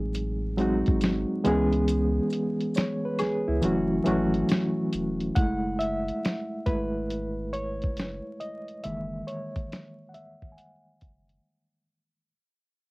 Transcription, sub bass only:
0.00 0.83 A1 loud
0.88 1.25 G#1 medium
1.46 2.20 C#2 loud
3.48 3.61 C#2 medium
3.63 4.00 F#1 loud
4.07 4.44 G#1 medium
4.94 5.31 E1 medium
5.37 6.11 F#1 medium
6.67 7.86 G#1 medium
7.84 8.21 F#1 medium
8.85 9.22 F#1 medium
10.43 10.56 G#1 medium
11.03 11.39 F#1 medium

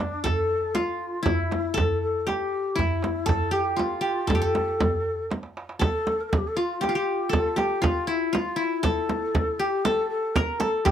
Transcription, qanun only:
0.00 1.24 D4 medium
0.24 1.41 A4 medium
0.75 1.29 F4 medium
1.23 2.62 E4 medium
1.74 2.91 A4 loud
2.27 3.51 G4 medium
2.75 3.82 E4 medium
3.26 4.27 A4 medium
3.51 4.00 G4 medium
3.76 5.11 F4 medium
4.01 4.34 G4 medium
4.27 4.41 A4 medium
4.35 5.60 G4 medium
4.42 5.59 A4 medium
5.79 6.97 A4 medium
6.57 6.88 F4 medium
6.81 6.95 G4 medium
6.89 7.81 F4 medium
6.95 7.56 G4 medium
7.29 8.47 A4 medium
7.56 8.82 G4 medium
7.82 8.13 F4 medium
8.07 8.39 E4 medium
8.33 8.62 F4 medium
8.56 9.95 E4 medium
8.83 9.85 A4 loud
9.59 10.85 G4 medium
9.85 10.42 A4 medium
10.36 10.66 A#4 medium
10.60 10.91 A4 medium
10.85 10.91 G4 medium

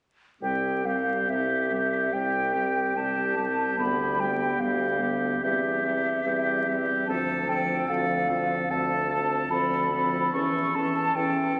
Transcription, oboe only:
0.43 0.85 G4 soft
0.87 1.29 G4 soft
1.30 1.72 G4 soft
1.74 2.14 G4 soft
2.15 2.54 G4 soft
2.54 2.95 G4 soft
2.96 3.36 G4 soft
3.37 3.77 G4 soft
3.78 4.18 G4 soft
4.21 4.60 G4 soft
4.61 5.01 G4 soft
5.02 5.42 G4 soft
5.44 5.84 G4 soft
5.86 6.26 G4 soft
6.27 6.67 G4 soft
6.69 7.08 G4 soft
7.10 7.49 A4 soft
7.50 7.88 A4 soft
7.89 8.29 A4 soft
8.30 8.69 A4 soft
8.71 9.10 A4 soft
9.11 9.51 A4 soft
9.51 9.80 A4 soft
9.93 10.33 A4 soft
10.35 10.75 A4 soft
10.76 11.15 A4 soft
11.17 11.56 A4 soft
11.57 11.60 A4 soft

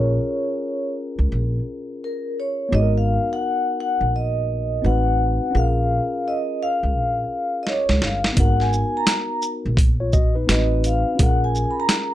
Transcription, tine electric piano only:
0.00 2.66 C#4 medium
0.00 2.67 F4 soft
0.00 2.69 G#4 soft
0.00 2.70 A#4 medium
2.69 4.78 B3 medium
2.69 4.79 D#4 medium
2.74 4.81 F#4 medium
2.74 2.82 G#4 soft
2.82 4.85 A#4 medium
4.82 5.54 C4 medium
4.82 5.54 D#4 medium
4.82 5.55 F#4 medium
4.82 5.55 B4 medium
5.51 8.31 C#4 medium
5.51 8.32 F4 medium
5.55 8.33 G#4 medium
5.55 8.35 A#4 medium
8.33 10.43 B3 medium
8.33 9.74 D#4 medium
8.38 9.76 F#4 medium
8.38 9.77 A#4 medium
10.00 10.13 F4 soft
10.00 10.13 C#5 medium
10.13 10.35 F#4 medium
10.13 10.34 D#5 medium
10.35 10.46 D#4 soft
10.35 10.49 B4 medium
10.46 10.56 B3 soft
10.46 11.19 D#4 soft
10.46 11.19 F#4 medium
10.46 11.20 B4 medium
10.53 11.21 C4 medium
11.15 12.14 C#4 medium
11.15 12.14 F4 soft
11.20 12.14 G#4 medium
11.20 12.14 A#4 medium

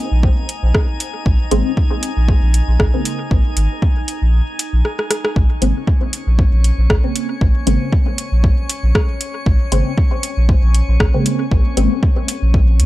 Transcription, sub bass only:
0.12 0.30 A#1 medium
0.63 0.72 A#1 medium
1.26 1.36 A#1 loud
1.52 1.62 G#1 medium
2.17 2.35 A#1 medium
2.42 2.61 A#1 medium
2.68 2.77 A#1 loud
2.80 2.90 A#1 medium
3.31 3.42 A#1 loud
3.57 3.67 G#1 medium
4.22 4.41 A#1 medium
4.73 4.82 A#1 loud
5.36 5.47 A#1 loud
5.62 5.72 G#1 medium
6.27 6.46 A#1 medium
6.53 6.71 A#1 medium
6.78 6.87 A#1 loud
6.90 7.00 A#1 medium
7.41 7.52 A#1 loud
7.67 7.77 G#1 medium
8.32 8.51 A#1 medium
8.83 8.92 A#1 medium
9.46 9.57 A#1 loud
9.72 9.82 G#1 medium
10.37 10.56 A#1 medium
10.63 10.81 A#1 medium
10.89 10.97 A#1 loud
11.00 11.11 A#1 medium
11.51 11.62 A#1 loud
11.77 11.88 G#1 medium
12.42 12.81 A#1 medium
12.80 12.86 F2 loud

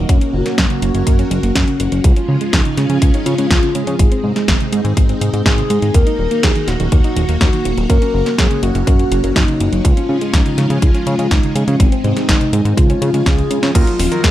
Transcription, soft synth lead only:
0.00 0.11 D#4 medium
0.09 0.35 C#4 medium
0.33 1.55 F#4 loud
1.56 2.06 C#4 medium
2.04 2.55 F4 loud
2.53 2.79 D#4 loud
2.77 3.15 C#4 loud
3.14 3.25 D#4 loud
3.26 3.49 F4 loud
3.50 3.76 F4 loud
3.75 4.24 G#4 loud
5.46 5.96 G#4 loud
5.94 6.45 A#4 loud
6.43 6.69 G#4 loud
6.68 7.40 F#4 loud
7.41 7.86 F#4 loud
7.90 8.35 A#4 loud
8.38 8.61 G#4 loud
8.63 9.38 F#4 loud
9.36 9.86 D#4 loud
9.85 10.35 F4 loud
10.34 10.72 D#4 medium
10.70 10.84 C#4 medium
10.82 11.30 F4 loud
11.31 11.69 D#4 loud
11.68 11.82 C#4 medium
11.80 12.04 C4 medium
12.04 12.30 C4 medium
12.29 12.79 D#4 medium
12.78 13.26 F4 medium
13.27 13.72 G#4 loud
13.75 14.26 F4 loud
14.24 14.31 G#4 loud

